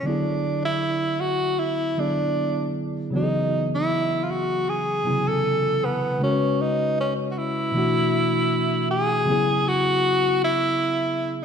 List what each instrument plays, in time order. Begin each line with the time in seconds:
0.03 tine electric piano D3 F#3 B3, tenor saxophone D4
0.08 tine electric piano E4 G#4
0.65 tenor saxophone E4
1.21 tenor saxophone F#4
1.60 tenor saxophone E4
1.97 tine electric piano D3 F#3 B3 E4 G#4, tenor saxophone D4
3.11 tine electric piano C#3 F#3 B3
3.15 tine electric piano E3 F#4, tenor saxophone D#4
3.23 tine electric piano G#4
3.75 tenor saxophone E4
4.24 tenor saxophone F4
4.31 tenor saxophone F#4
4.69 tenor saxophone G#4
5.04 tine electric piano C3 F#3 B3 E4 G#5
5.10 tine electric piano C#3
5.28 tenor saxophone A4
5.85 tenor saxophone B3
6.18 tine electric piano C#3 G#3 C#4
6.23 tenor saxophone C#4, tine electric piano F#4 A#4
6.31 tine electric piano B4
6.62 tenor saxophone D#4
7.00 tenor saxophone C#4
7.31 tenor saxophone F#4
7.38 tenor saxophone E4
7.71 tine electric piano B2 E3 A3
7.76 tine electric piano D4 F#4
8.91 tenor saxophone G#4
9.25 tine electric piano C#3 F#3 B3
9.30 tine electric piano E4 G#4
9.68 tenor saxophone F#4
10.44 tenor saxophone E4